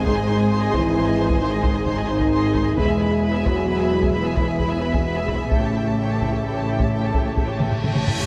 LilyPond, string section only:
\new Staff \with { instrumentName = "String section" } { \time 12/8 \key gis \phrygian \tempo 4. = 87 << { gis''1. | e''1.~ | e''1. | } \\ { <gis gis' bis'>1. | <gis gis' b'>1. | <a g' a'>1. | } >> }